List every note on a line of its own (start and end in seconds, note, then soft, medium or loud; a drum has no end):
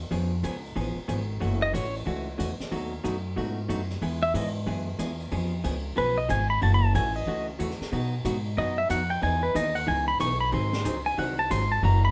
0.11 0.42 F2 medium
0.11 0.32 F3 medium
0.11 0.32 B3 medium
0.11 0.32 C#4 medium
0.11 0.32 G#4 medium
0.11 ride medium
0.43 0.75 C#2 loud
0.43 0.55 F3 medium
0.43 0.55 B3 medium
0.43 0.55 C#4 medium
0.43 0.55 G#4 medium
0.43 hi-hat pedal medium
0.43 ride medium
0.65 ride soft
0.76 0.95 A1 medium
0.76 0.97 F3 medium
0.76 0.97 B3 medium
0.76 0.97 C#4 medium
0.76 0.97 G#4 medium
0.76 ride medium
0.97 muted upright bass stroke soft
1.08 1.40 G#1 medium
1.08 1.20 F3 medium
1.08 1.20 B3 medium
1.08 1.20 C#4 medium
1.08 1.20 G#4 medium
1.08 hi-hat pedal medium
1.08 ride medium
1.40 1.73 F#1 medium
1.40 1.62 C#3 medium
1.40 1.62 E3 medium
1.40 1.62 A3 medium
1.40 1.62 C#4 medium
1.40 1.62 F#4 medium
1.40 ride medium
1.62 1.74 D#5 loud
1.73 2.05 A1 medium
1.73 1.85 C#3 medium
1.73 1.85 E3 medium
1.73 1.85 A3 medium
1.73 1.85 C#4 medium
1.73 1.85 F#4 medium
1.73 1.94 C#5 medium
1.73 hi-hat pedal medium
1.73 ride medium
1.95 ride medium
2.06 2.38 C#2 medium
2.06 2.27 C#3 medium
2.06 2.27 E3 medium
2.06 2.27 A3 medium
2.06 2.28 C#4 medium
2.06 2.28 F#4 medium
2.06 ride medium
2.38 2.58 E2 medium
2.38 2.50 C#3 medium
2.38 2.50 E3 medium
2.38 2.50 A3 medium
2.38 2.50 C#4 medium
2.38 2.50 F#4 medium
2.38 hi-hat pedal medium
2.38 ride medium
2.60 muted upright bass stroke soft
2.60 snare soft
2.71 3.03 D#2 medium
2.71 2.92 B2 medium
2.71 2.93 F#3 medium
2.71 2.93 A3 medium
2.71 2.93 D#4 medium
2.71 2.93 F#4 medium
2.71 ride medium
3.04 3.36 F#2 medium
3.04 3.15 B2 medium
3.04 3.15 F#3 medium
3.04 3.15 A3 medium
3.04 3.15 D#4 medium
3.04 3.16 F#4 medium
3.04 hi-hat pedal medium
3.04 ride medium
3.36 3.68 G#2 medium
3.36 3.58 B2 medium
3.36 3.58 F#3 medium
3.36 3.58 A3 medium
3.36 3.58 D#4 medium
3.36 3.58 F#4 medium
3.36 ride medium
3.68 4.01 F#2 medium
3.68 3.80 B2 medium
3.68 3.80 F#3 medium
3.68 3.80 A3 medium
3.68 3.81 D#4 medium
3.68 3.81 F#4 medium
3.68 hi-hat pedal medium
3.68 ride medium
3.90 snare soft
3.90 ride soft
4.02 4.33 E2 medium
4.02 4.23 E3 medium
4.02 4.23 G#3 medium
4.02 4.23 B3 medium
4.02 4.23 E4 medium
4.02 4.23 G#4 medium
4.02 ride medium
4.23 4.34 E5 loud
4.34 4.66 G#2 loud
4.34 4.45 E3 medium
4.34 4.46 G#3 medium
4.34 4.46 B3 medium
4.34 4.46 E4 medium
4.34 4.46 G#4 medium
4.34 4.48 D#5 medium
4.34 hi-hat pedal medium
4.34 ride medium
4.66 4.98 F#2 medium
4.66 4.88 E3 medium
4.66 4.88 G#3 medium
4.66 4.88 B3 medium
4.66 4.88 E4 medium
4.66 4.88 G#4 medium
4.66 ride medium
4.99 5.31 E2 medium
4.99 5.10 E3 medium
4.99 5.11 G#3 medium
4.99 5.11 B3 medium
4.99 5.11 E4 medium
4.99 5.11 G#4 medium
4.99 hi-hat pedal medium
4.99 ride medium
5.20 ride soft
5.31 5.63 F2 medium
5.31 5.53 F3 medium
5.31 5.53 B3 medium
5.31 5.53 C#4 medium
5.31 5.53 G#4 medium
5.31 ride medium
5.64 5.96 C#2 medium
5.64 5.76 F3 medium
5.64 5.76 B3 medium
5.64 5.76 C#4 medium
5.64 5.76 G#4 medium
5.64 hi-hat pedal medium
5.64 ride medium
5.96 6.29 B1 medium
5.96 6.18 F3 medium
5.96 6.18 B3 medium
5.96 6.18 C#4 medium
5.96 6.18 G#4 medium
5.96 6.18 B4 medium
5.96 ride medium
6.18 6.29 D#5 loud
6.29 6.61 G#1 medium
6.29 6.40 F3 medium
6.29 6.41 B3 medium
6.29 6.41 C#4 medium
6.29 6.41 G#4 medium
6.29 6.50 G#5 medium
6.29 hi-hat pedal medium
6.29 ride medium
6.50 6.62 B5 medium
6.61 6.94 F#1 loud
6.61 6.83 C#3 medium
6.61 6.83 E3 medium
6.61 6.83 A3 medium
6.61 6.83 C#4 medium
6.61 6.83 F#4 medium
6.61 6.73 A5 medium
6.61 ride medium
6.74 6.85 B5 loud
6.85 6.95 A5 medium
6.94 7.26 A1 medium
6.94 7.06 C#3 medium
6.94 7.06 E3 medium
6.94 7.06 A3 medium
6.94 7.06 C#4 medium
6.94 7.06 F#4 medium
6.94 7.15 G#5 medium
6.94 hi-hat pedal medium
6.94 ride medium
7.16 7.46 D#5 medium
7.16 ride medium
7.27 7.59 C#2 medium
7.27 7.48 C#3 medium
7.27 7.48 E3 medium
7.27 7.49 A3 medium
7.27 7.49 C#4 medium
7.27 7.49 F#4 medium
7.59 7.79 E2 medium
7.59 7.71 C#3 medium
7.59 7.71 E3 medium
7.59 7.71 A3 medium
7.59 7.71 C#4 medium
7.59 7.71 F#4 medium
7.59 hi-hat pedal medium
7.59 ride medium
7.70 snare soft
7.80 muted upright bass stroke soft
7.80 snare medium
7.80 ride medium
7.92 8.13 B2 medium
7.92 8.24 B2 medium
7.92 8.14 F#3 medium
7.92 8.14 B3 medium
7.92 8.14 D#4 medium
7.92 8.14 F#4 medium
7.92 ride medium
8.25 8.56 G#2 medium
8.25 8.36 B2 medium
8.25 8.36 F#3 medium
8.25 8.37 B3 medium
8.25 8.37 D#4 medium
8.25 8.37 F#4 medium
8.25 hi-hat pedal medium
8.25 ride medium
8.45 ride soft
8.57 8.89 F#2 medium
8.57 8.79 B2 medium
8.57 8.79 F#3 medium
8.57 8.79 B3 medium
8.57 8.79 D#4 medium
8.57 8.79 F#4 medium
8.57 8.78 D#5 medium
8.57 ride medium
8.78 8.90 E5 loud
8.89 9.21 F2 medium
8.89 9.01 B2 medium
8.89 9.01 F#3 medium
8.89 9.01 B3 medium
8.89 9.02 D#4 medium
8.89 9.02 F#4 medium
8.89 9.10 F#5 medium
8.89 hi-hat pedal medium
8.89 ride medium
9.10 9.22 G5 medium
9.10 ride medium
9.22 9.54 E2 medium
9.22 9.43 E3 medium
9.22 9.44 B3 medium
9.22 9.44 D#4 medium
9.22 9.44 G#4 medium
9.22 9.43 G#5 medium
9.22 ride medium
9.43 9.55 B4 medium
9.54 9.87 D#2 medium
9.54 9.66 E3 medium
9.54 9.66 B3 medium
9.54 9.67 D#4 medium
9.54 9.67 G#4 medium
9.54 9.76 D#5 medium
9.54 hi-hat pedal medium
9.54 ride medium
9.75 9.87 F#5 medium
9.75 ride medium
9.87 10.19 C#2 medium
9.87 10.08 E3 medium
9.87 10.08 B3 medium
9.87 10.09 D#4 medium
9.87 10.09 G#4 medium
9.87 10.07 G#5 medium
10.08 10.20 B5 loud
10.20 10.52 B1 medium
10.20 10.31 E3 medium
10.20 10.32 B3 medium
10.20 10.32 D#4 medium
10.20 10.32 G#4 medium
10.20 10.40 C#6 loud
10.20 hi-hat pedal medium
10.20 ride medium
10.40 10.52 B5 medium
10.52 10.84 G#1 medium
10.52 10.74 D#3 medium
10.52 10.74 F#3 medium
10.52 10.74 C4 medium
10.52 10.74 D#4 medium
10.52 10.74 G#4 medium
10.52 11.03 C6 medium
10.52 ride medium
10.73 snare medium
10.85 11.17 C#2 loud
10.85 10.96 D#3 medium
10.85 10.97 F#3 medium
10.85 10.97 C4 medium
10.85 10.97 D#4 medium
10.85 10.97 G#4 medium
10.85 hi-hat pedal medium
10.85 ride medium
11.06 11.18 G#5 medium
11.06 ride medium
11.18 11.50 C2 medium
11.18 11.39 D#3 medium
11.18 11.39 F#3 medium
11.18 11.39 C4 medium
11.18 11.39 D#4 medium
11.18 11.40 G#4 medium
11.18 11.39 F#5 medium
11.18 ride medium
11.39 11.50 A5 loud
11.50 11.82 G#1 medium
11.50 11.62 D#3 medium
11.50 11.62 F#3 medium
11.50 11.62 C4 medium
11.50 11.62 D#4 medium
11.50 11.62 G#4 medium
11.50 11.71 C6 loud
11.50 hi-hat pedal medium
11.50 ride medium
11.72 11.83 A5 loud
11.72 ride medium
11.83 12.11 F#1 loud
11.83 12.04 C#3 medium
11.83 12.04 E3 medium
11.83 12.04 A#3 medium
11.83 12.04 C#4 medium
11.83 12.04 F#4 medium
11.83 12.04 A#5 medium
11.83 ride medium
12.05 12.11 B5 loud